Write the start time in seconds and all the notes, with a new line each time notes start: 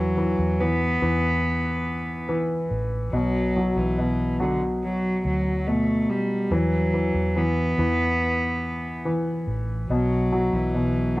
Already playing: E2 E3 F#3
0.17 E3
0.39 E2
0.60 E3 B3
1.02 E2 E3
2.29 E3
2.71 A1
3.13 B1 B2 F#3
3.56 F#3
3.76 B1 E3
3.98 B2
4.40 D3 F#3
4.84 F#3
5.25 D2 F#3
5.67 B2 A3
6.10 G3
6.51 E2 E3 F#3
6.93 E3
7.14 E2
7.36 E3 B3
7.78 E2 E3
9.05 E3
9.47 A1
9.90 B1 B2 F#3
10.32 F#3
10.53 B1 E3
10.74 B2
11.17 D3